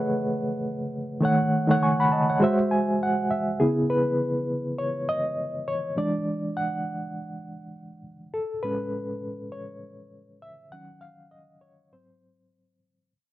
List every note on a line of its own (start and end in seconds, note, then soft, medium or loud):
0.00 1.22 A3 medium
0.00 1.25 G#4 medium
0.00 1.24 B4 medium
0.00 1.23 C#5 medium
0.00 1.25 D#5 loud
0.00 0.73 F#5 loud
1.21 1.66 D#3 medium
1.21 1.66 A3 medium
1.21 1.67 C#5 medium
1.25 1.68 F#5 medium
1.68 1.96 D#3 medium
1.68 1.97 A3 medium
1.68 1.83 C#5 medium
1.68 1.83 F#5 medium
1.83 1.99 G#5 medium
1.83 1.99 C#6 medium
2.00 2.12 F#5 medium
2.00 2.12 B5 medium
2.12 2.29 D#5 medium
2.12 2.28 A5 medium
2.30 2.58 C#5 medium
2.30 2.58 F#5 medium
2.40 3.53 G#3 medium
2.40 3.54 F#4 medium
2.40 3.55 C5 medium
2.40 3.29 E5 medium
2.71 2.99 G#5 medium
3.03 3.30 F#5 medium
3.31 3.58 E5 medium
3.60 4.02 C#3 medium
3.60 4.02 B3 medium
3.60 4.02 E4 medium
3.60 3.91 G#4 medium
3.90 4.82 B4 medium
4.78 5.09 C#5 medium
5.09 5.70 D#5 loud
5.68 5.99 C#5 medium
5.96 8.31 E3 medium
5.96 8.31 G#3 soft
5.96 8.31 D4 medium
5.96 6.59 D5 loud
6.57 8.02 F#5 medium
8.34 8.65 A4 medium
8.63 10.68 A2 medium
8.63 10.69 G#3 medium
8.63 10.69 C#4 medium
8.63 9.19 B4 loud
9.52 10.45 C#5 medium
10.42 10.74 E5 loud
10.72 11.14 D#3 medium
10.72 11.14 F#3 soft
10.72 11.15 C#4 medium
10.72 11.03 F#5 loud
11.01 11.33 F5 loud
11.31 11.45 D#5 medium
11.61 11.93 C#5 medium
11.92 12.77 G#2 medium
11.92 12.78 F#3 soft
11.92 12.78 C4 medium
11.92 12.48 C5 medium